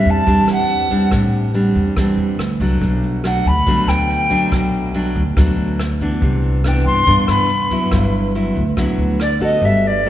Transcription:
0.00 0.25 A2 medium
0.00 0.23 G3 medium
0.00 0.23 C4 medium
0.00 0.24 D4 medium
0.00 0.11 E5 medium
0.05 0.25 E2 medium
0.05 kick soft
0.05 closed hi-hat soft
0.10 0.50 A5 loud
0.27 0.37 E2 medium
0.27 1.10 E3 medium
0.27 0.87 G3 medium
0.27 0.87 C4 medium
0.27 0.88 D4 medium
0.27 kick medium
0.27 closed hi-hat soft
0.47 1.07 E2 medium
0.47 cross-stick medium
0.47 closed hi-hat soft
0.52 1.10 F#5 loud
0.69 closed hi-hat soft
0.90 1.51 G3 medium
0.90 1.51 C4 medium
0.90 1.51 D4 medium
0.90 kick soft
0.90 closed hi-hat soft
1.11 1.71 A1 loud
1.11 1.95 A2 medium
1.11 kick medium
1.11 cross-stick medium
1.11 closed hi-hat soft
1.33 closed hi-hat soft
1.54 1.93 G3 medium
1.54 1.93 C4 medium
1.54 1.94 D4 medium
1.54 closed hi-hat soft
1.75 1.95 E2 loud
1.75 kick soft
1.75 closed hi-hat soft
1.96 2.06 E2 medium
1.96 2.80 E3 medium
1.96 2.39 G3 medium
1.96 2.40 C4 medium
1.96 2.40 D4 medium
1.96 kick medium
1.96 cross-stick medium
1.96 closed hi-hat soft
2.17 2.37 E2 medium
2.17 closed hi-hat soft
2.38 2.57 D2 medium
2.38 cross-stick medium
2.38 closed hi-hat soft
2.60 2.79 C2 medium
2.60 3.21 F#3 medium
2.60 3.21 A3 medium
2.60 3.21 D4 medium
2.60 kick soft
2.60 closed hi-hat soft
2.81 3.41 B1 loud
2.81 3.65 B2 medium
2.81 kick medium
2.81 closed hi-hat soft
3.03 closed hi-hat soft
3.24 3.51 F#3 medium
3.24 3.52 A3 medium
3.24 3.52 D4 medium
3.24 3.49 F#5 medium
3.24 cross-stick medium
3.24 closed hi-hat soft
3.45 3.65 D2 medium
3.45 3.89 B5 loud
3.45 kick soft
3.45 closed hi-hat soft
3.67 3.77 D2 loud
3.67 4.50 B2 medium
3.67 4.28 F#3 medium
3.67 4.28 A3 medium
3.67 4.28 D4 medium
3.67 kick medium
3.67 closed hi-hat soft
3.87 4.47 D2 medium
3.87 4.52 G5 loud
3.87 cross-stick medium
3.87 closed hi-hat soft
4.10 closed hi-hat medium
4.30 4.91 F#3 medium
4.30 4.91 A3 medium
4.30 4.91 D4 medium
4.30 kick soft
4.30 closed hi-hat soft
4.51 5.11 B1 loud
4.51 5.35 B2 medium
4.51 kick medium
4.51 cross-stick medium
4.51 closed hi-hat medium
4.74 closed hi-hat soft
4.94 5.22 F#3 medium
4.94 5.22 A3 medium
4.94 5.22 D4 medium
4.94 closed hi-hat soft
5.15 5.35 D2 loud
5.15 kick soft
5.15 closed hi-hat soft
5.36 5.46 D2 loud
5.36 6.20 B2 medium
5.36 5.79 F#3 medium
5.36 5.79 A3 medium
5.36 5.79 D4 medium
5.36 kick medium
5.36 cross-stick medium
5.36 closed hi-hat soft
5.57 6.17 D2 medium
5.57 closed hi-hat soft
5.79 cross-stick medium
5.79 closed hi-hat soft
6.01 6.61 E3 medium
6.01 6.62 B3 medium
6.01 6.62 D4 medium
6.01 kick soft
6.01 closed hi-hat soft
6.22 6.82 C2 loud
6.22 7.05 C3 medium
6.22 kick medium
6.22 closed hi-hat soft
6.43 closed hi-hat soft
6.64 7.04 E3 medium
6.64 7.04 B3 medium
6.64 7.04 D4 medium
6.64 6.85 G5 medium
6.64 cross-stick medium
6.64 closed hi-hat soft
6.85 7.05 G2 loud
6.85 7.25 C6 loud
6.85 kick soft
6.85 closed hi-hat soft
7.07 7.17 G2 medium
7.07 7.90 G2 medium
7.07 7.49 E3 medium
7.07 7.49 B3 medium
7.07 7.49 D4 medium
7.07 kick medium
7.07 closed hi-hat soft
7.28 7.88 G2 medium
7.28 7.88 B5 loud
7.28 cross-stick medium
7.28 closed hi-hat soft
7.49 closed hi-hat soft
7.70 8.31 F#3 medium
7.70 8.31 B3 medium
7.70 8.32 E4 medium
7.70 kick soft
7.70 closed hi-hat soft
7.91 8.52 G1 loud
7.91 8.75 G2 medium
7.91 kick medium
7.91 cross-stick medium
7.91 closed hi-hat soft
8.13 closed hi-hat soft
8.35 8.62 F#3 medium
8.35 8.62 B3 medium
8.35 8.63 E4 medium
8.35 closed hi-hat soft
8.56 8.76 D2 medium
8.56 kick soft
8.56 closed hi-hat soft
8.77 8.87 D2 medium
8.77 9.61 D3 medium
8.77 9.20 F#3 medium
8.77 9.20 B3 medium
8.77 9.20 E4 medium
8.77 kick medium
8.77 cross-stick medium
8.77 closed hi-hat soft
8.97 9.58 D2 medium
8.97 closed hi-hat soft
9.20 9.40 D5 loud
9.20 cross-stick medium
9.20 closed hi-hat soft
9.41 10.01 B3 medium
9.41 10.02 F#4 medium
9.41 10.02 A4 medium
9.41 9.66 D#5 loud
9.41 kick soft
9.41 closed hi-hat soft
9.61 10.10 G1 loud
9.61 10.10 G3 soft
9.61 9.88 E5 loud
9.87 10.10 D5 medium
10.06 10.10 B3 soft
10.06 10.10 F#4 medium
10.06 10.10 A4 medium

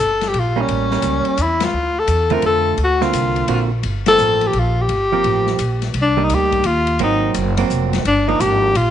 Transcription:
0.00 0.33 G1 medium
0.00 0.30 A4 medium
0.21 snare soft
0.21 ride soft
0.28 0.41 G4 medium
0.34 0.68 A#1 medium
0.34 kick soft
0.34 ride medium
0.39 0.63 F4 medium
0.56 0.90 G3 medium
0.56 0.91 A#3 medium
0.56 0.91 C#4 medium
0.61 1.43 C#4 medium
0.68 1.02 A1 medium
0.68 kick soft
0.68 ride medium
0.91 1.37 G3 medium
0.91 1.37 A#3 medium
0.91 1.37 C#4 soft
0.91 snare soft
1.02 1.25 C#2 medium
1.02 kick soft
1.02 hi-hat pedal medium
1.02 ride medium
1.25 ride soft
1.37 1.73 E2 medium
1.37 kick soft
1.37 hi-hat pedal soft
1.37 ride medium
1.42 1.66 E4 medium
1.60 2.00 F4 medium
1.60 snare medium
1.60 ride medium
1.73 2.07 D2 medium
1.99 2.35 A4 loud
2.07 2.42 E2 medium
2.07 kick soft
2.07 hi-hat pedal soft
2.07 ride medium
2.30 2.76 D3 medium
2.30 2.76 A3 medium
2.30 2.77 C4 medium
2.30 2.77 F4 medium
2.30 2.45 A#4 medium
2.30 ride soft
2.42 2.77 F2 medium
2.42 2.78 A4 loud
2.42 kick soft
2.42 ride medium
2.78 3.12 D2 medium
2.78 kick soft
2.78 ride medium
2.84 3.05 F#4 medium
3.01 3.47 D3 medium
3.01 3.47 A#3 medium
3.01 3.47 C4 medium
3.01 3.73 F4 medium
3.01 snare soft
3.13 3.47 C2 medium
3.13 kick soft
3.13 hi-hat pedal medium
3.13 ride medium
3.36 ride soft
3.48 3.83 A#1 medium
3.48 3.69 D3 soft
3.48 3.70 A#3 soft
3.48 3.70 C4 medium
3.48 3.70 F#4 medium
3.48 kick soft
3.48 ride medium
3.83 4.18 G1 medium
3.83 kick soft
3.83 ride medium
4.06 4.52 F3 medium
4.06 4.53 A#3 medium
4.06 4.53 C4 medium
4.06 4.48 A4 loud
4.06 snare medium
4.06 ride medium
4.18 4.53 A1 medium
4.18 hi-hat pedal medium
4.41 ride soft
4.47 4.61 G4 medium
4.53 4.88 A#1 medium
4.53 kick soft
4.53 ride soft
4.59 4.83 F4 medium
4.81 5.84 G4 medium
4.89 5.23 G1 medium
4.89 kick soft
4.89 ride medium
5.12 5.57 F3 medium
5.12 5.58 A#3 medium
5.12 5.58 C4 medium
5.24 5.58 A1 medium
5.24 kick soft
5.24 ride medium
5.47 snare soft
5.59 5.93 A#1 medium
5.59 kick soft
5.59 hi-hat pedal soft
5.59 ride medium
5.82 snare soft
5.82 ride soft
5.94 6.28 C2 medium
5.94 kick soft
5.94 ride medium
6.01 6.25 D4 medium
6.17 6.62 G3 medium
6.17 6.63 A#3 medium
6.17 6.63 D#4 medium
6.24 6.36 D#4 medium
6.30 6.64 D2 medium
6.30 kick soft
6.30 hi-hat pedal soft
6.30 ride medium
6.34 6.68 G4 loud
6.52 kick soft
6.52 ride soft
6.64 6.99 D#2 medium
6.64 7.01 F4 medium
6.64 ride medium
6.87 ride soft
6.99 7.34 G#1 medium
6.99 7.53 F#3 medium
6.99 7.54 A#3 medium
6.99 7.54 C4 medium
6.99 kick soft
6.99 ride medium
7.03 7.34 D#4 medium
7.34 7.69 F#1 medium
7.34 kick soft
7.34 hi-hat pedal soft
7.34 ride medium
7.57 8.03 F#3 medium
7.57 8.03 A#3 medium
7.57 8.03 C4 medium
7.57 ride medium
7.70 8.04 F1 medium
7.70 kick soft
7.70 hi-hat pedal medium
7.93 snare medium
7.93 ride soft
8.05 8.39 G1 medium
8.05 8.30 D4 medium
8.05 kick soft
8.05 ride medium
8.28 8.73 F3 medium
8.28 8.73 A#3 medium
8.28 8.74 D4 medium
8.28 8.42 D#4 medium
8.40 8.74 G#1 medium
8.40 8.78 G4 loud
8.40 kick soft
8.40 hi-hat pedal medium
8.40 ride medium
8.75 8.90 A#1 medium
8.75 8.90 F4 medium
8.75 kick soft
8.75 ride medium

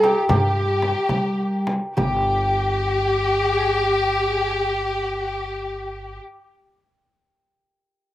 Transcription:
0.00 0.12 G3 medium
0.00 1.39 F4 medium
0.00 0.27 G4 medium
0.00 0.29 G4 medium
0.00 2.67 A#4 medium
0.00 frame drum medium
0.27 0.92 G2 medium
0.27 1.63 G4 medium
0.27 1.96 G4 medium
0.27 1.64 G4 medium
0.27 frame drum medium
0.82 frame drum medium
1.09 1.78 G3 medium
1.09 frame drum medium
1.67 frame drum medium
1.96 6.18 G1 medium
1.96 3.44 G4 loud
1.96 6.17 G4 medium
1.96 6.18 G4 medium
1.96 frame drum medium
3.44 3.85 G#4 loud
3.85 4.28 G4 loud
4.28 4.69 G#4 loud
4.69 6.16 G4 loud

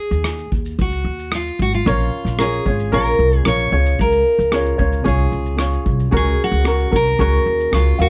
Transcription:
0.00 0.49 G#4 medium
0.11 0.44 D#2 medium
0.11 shaker soft
0.24 cross-stick loud
0.24 shaker medium
0.39 shaker soft
0.52 0.74 D#2 medium
0.52 kick medium
0.66 shaker medium
0.79 1.01 C#2 medium
0.79 1.35 F#4 medium
0.79 kick medium
0.79 shaker medium
0.92 shaker medium
1.04 1.49 D#2 medium
1.19 shaker soft
1.32 1.61 F4 medium
1.32 cross-stick medium
1.32 shaker medium
1.47 shaker soft
1.59 1.81 G#1 medium
1.59 1.74 F#4 medium
1.59 kick medium
1.73 1.86 F4 medium
1.73 shaker soft
1.86 2.08 A#1 loud
1.86 2.39 C#4 medium
1.86 2.40 F4 medium
1.86 2.41 F4 medium
1.86 2.37 A#4 medium
1.86 2.41 C#5 medium
1.86 kick loud
1.86 shaker medium
2.00 shaker soft
2.25 2.58 A#1 medium
2.25 cross-stick soft
2.25 shaker soft
2.39 2.66 C#4 medium
2.39 2.67 F4 medium
2.39 2.94 G#4 medium
2.39 2.66 A#4 medium
2.39 2.65 C#5 medium
2.39 cross-stick loud
2.39 shaker medium
2.53 shaker medium
2.66 2.88 G#1 medium
2.66 2.92 C#4 soft
2.66 2.92 F4 soft
2.66 2.92 C#5 soft
2.66 kick medium
2.80 shaker medium
2.92 3.15 A#1 medium
2.92 3.45 C#4 medium
2.92 3.46 F4 medium
2.92 3.44 A#4 medium
2.92 3.37 A#4 medium
2.92 3.47 C#5 medium
2.92 kick medium
2.92 shaker medium
3.06 shaker soft
3.19 3.41 C2 medium
3.33 shaker soft
3.37 3.47 G#4 medium
3.45 3.68 A#1 medium
3.45 3.72 C#4 medium
3.45 3.71 F4 medium
3.45 3.72 A#4 medium
3.45 3.71 C#5 medium
3.45 4.00 C#5 medium
3.45 cross-stick medium
3.45 shaker medium
3.60 shaker soft
3.72 3.94 C#2 medium
3.72 4.53 C#4 medium
3.72 4.53 F4 medium
3.72 4.51 G#4 soft
3.72 4.54 C#5 medium
3.86 shaker medium
3.99 4.21 C#2 medium
3.99 5.07 A#4 medium
3.99 kick loud
3.99 shaker medium
4.12 shaker medium
4.39 4.72 C#2 medium
4.39 shaker soft
4.52 4.79 C#4 medium
4.52 4.78 F4 medium
4.52 4.79 G#4 medium
4.52 4.77 C#5 medium
4.52 cross-stick loud
4.52 shaker medium
4.66 shaker soft
4.78 5.01 C#2 medium
4.78 5.04 C#4 soft
4.78 5.04 F4 soft
4.78 5.05 C#5 soft
4.78 kick medium
4.93 shaker medium
5.04 5.28 C2 medium
5.04 5.58 C#4 medium
5.04 5.58 F4 medium
5.04 5.57 G#4 medium
5.04 5.83 G#4 medium
5.04 5.60 C#5 medium
5.04 kick medium
5.04 shaker medium
5.18 shaker medium
5.32 5.76 C#2 medium
5.32 shaker soft
5.46 shaker soft
5.57 6.11 C#4 medium
5.57 6.12 F4 medium
5.57 6.10 G#4 medium
5.57 6.13 C#5 medium
5.57 cross-stick medium
5.57 shaker medium
5.73 shaker soft
5.86 6.08 C2 medium
5.86 kick medium
6.00 shaker medium
6.11 6.34 C#2 loud
6.11 6.65 C#4 medium
6.11 6.66 F#4 medium
6.11 6.63 G#4 medium
6.11 6.67 A#4 medium
6.11 kick loud
6.11 shaker medium
6.17 6.42 G#4 medium
6.26 shaker soft
6.44 6.97 F#4 medium
6.52 6.85 C#2 medium
6.52 shaker soft
6.65 6.92 C#4 medium
6.65 6.91 F#4 medium
6.65 6.92 G#4 medium
6.65 6.90 A#4 medium
6.65 cross-stick loud
6.65 shaker medium
6.80 shaker soft
6.91 7.14 C2 medium
6.91 7.18 C#4 soft
6.91 7.19 F#4 soft
6.91 7.19 A#4 soft
6.91 kick medium
6.96 7.20 A#4 medium
7.07 shaker medium
7.19 7.41 C#2 medium
7.19 7.72 C#4 medium
7.19 7.73 F#4 medium
7.19 7.71 G#4 medium
7.19 7.74 A#4 medium
7.19 kick medium
7.19 shaker medium
7.33 shaker soft
7.46 7.68 D#2 medium
7.60 shaker soft
7.72 7.94 C#2 medium
7.72 8.00 C#4 medium
7.72 8.01 F4 medium
7.72 8.00 F#4 medium
7.72 7.99 G#4 soft
7.72 7.98 A#4 medium
7.72 cross-stick loud
7.72 shaker medium
7.87 shaker soft
7.99 8.09 D#2 loud
7.99 8.09 F#4 medium
7.99 8.09 F#4 soft
7.99 8.09 A#4 soft
7.99 8.09 F5 soft
7.99 shaker soft

